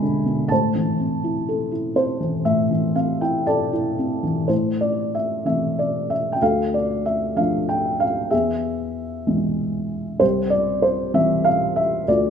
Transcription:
0.00 0.47 E2 medium
0.00 0.24 B2 soft
0.00 0.02 D3 soft
0.00 0.49 D3 soft
0.00 0.52 G#3 soft
0.00 0.47 B3 soft
0.00 0.46 G#4 medium
0.00 0.53 E5 medium
0.00 0.52 G#5 medium
0.00 0.50 B5 medium
0.26 0.49 B2 soft
0.48 2.44 A2 medium
0.48 1.95 C5 medium
0.48 3.42 A5 medium
0.75 2.19 E3 soft
1.00 1.94 C4 soft
1.24 1.70 E4 soft
1.49 3.44 A4 soft
1.72 3.20 E4 soft
1.95 2.94 C4 soft
1.95 2.42 C5 medium
2.20 2.69 E3 soft
2.45 4.45 A2 medium
2.45 2.92 E5 medium
2.71 4.22 E3 soft
2.95 3.97 C4 soft
2.95 3.19 F5 medium
3.21 3.71 E4 soft
3.21 3.45 G5 medium
3.46 4.45 A4 soft
3.46 4.51 D5 medium
3.46 4.44 A5 medium
3.73 4.46 E4 medium
3.98 4.47 C4 soft
4.23 4.47 E3 soft
4.48 6.37 A2 soft
4.48 6.37 E4 soft
4.48 4.78 C5 medium
4.81 5.14 D5 medium
5.15 5.45 E5 medium
5.45 6.38 E3 soft
5.45 6.38 A3 soft
5.45 6.38 C4 soft
5.45 5.79 E5 medium
5.79 6.11 D5 medium
6.10 6.33 E5 medium
6.32 6.40 G5 medium
6.41 8.28 D2 medium
6.41 8.29 A4 medium
6.41 6.74 F5 medium
6.74 7.03 D5 medium
7.06 7.38 E5 medium
7.36 8.29 F3 soft
7.36 8.29 A3 soft
7.36 8.29 D4 soft
7.36 7.67 F5 medium
7.69 8.02 G5 medium
8.00 8.33 F5 medium
8.31 10.16 E2 medium
8.31 10.16 G#4 medium
8.31 10.25 E5 medium
9.27 10.18 E3 soft
9.27 10.18 G#3 soft
9.27 10.18 B3 soft
10.19 12.04 C2 medium
10.19 12.03 G4 soft
10.19 10.52 C5 medium
10.50 10.83 D5 medium
10.82 11.15 C5 medium
11.14 12.05 E3 soft
11.14 12.05 G3 soft
11.14 12.05 C4 soft
11.14 11.46 E5 medium
11.45 11.77 F5 medium
11.76 12.08 E5 medium
12.08 12.30 D2 medium
12.08 12.30 F4 medium
12.08 12.30 D5 medium

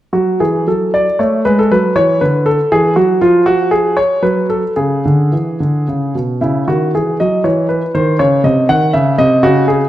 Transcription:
0.13 0.39 F#3 soft
0.13 0.40 F#4 medium
0.40 0.66 E3 soft
0.40 0.67 G#4 medium
0.67 1.05 F#3 soft
0.67 0.90 A4 medium
0.94 1.20 D5 medium
1.19 1.44 A3 medium
1.19 1.41 C#5 medium
1.45 1.70 G#3 soft
1.45 1.58 B4 medium
1.59 1.71 A4 medium
1.71 1.95 F#3 medium
1.71 1.92 B4 medium
1.96 2.20 E3 medium
1.96 2.21 C#5 medium
2.21 2.57 D3 soft
2.21 2.46 B4 medium
2.46 2.71 A4 medium
2.72 2.95 E3 medium
2.72 2.93 G#4 medium
2.96 3.20 F#3 medium
2.96 3.21 F#4 medium
3.21 3.94 F3 medium
3.21 3.42 F4 medium
3.46 3.71 F#4 medium
3.71 3.97 G#4 medium
3.97 4.23 C#5 medium
4.22 4.61 F#3 soft
4.22 4.45 B4 medium
4.50 4.73 A4 medium
4.76 5.03 C#3 soft
4.76 6.14 G#4 medium
5.05 5.31 D3 soft
5.32 5.58 E3 soft
5.60 5.86 D3 soft
5.88 6.13 C#3 soft
6.15 6.40 B2 soft
6.41 6.67 C#3 soft
6.41 6.64 E4 medium
6.67 6.93 D#3 soft
6.67 6.90 F#4 medium
6.95 7.19 E3 soft
6.95 7.16 G#4 medium
7.20 7.44 F#3 soft
7.20 7.41 D#5 medium
7.44 7.80 E3 medium
7.44 7.66 C#5 medium
7.69 7.91 B4 medium
7.94 8.18 D#3 medium
7.94 8.16 C5 medium
8.19 8.43 C#3 medium
8.19 8.41 C#5 medium
8.44 8.68 C3 soft
8.44 8.65 D#5 medium
8.69 8.93 D#3 medium
8.69 8.90 F#5 medium
8.93 9.17 C#3 medium
8.93 9.15 E5 medium
9.18 9.42 C3 medium
9.18 9.43 D#5 medium
9.43 9.79 C#3 medium
9.43 9.64 F#4 medium
9.68 9.89 G#4 medium

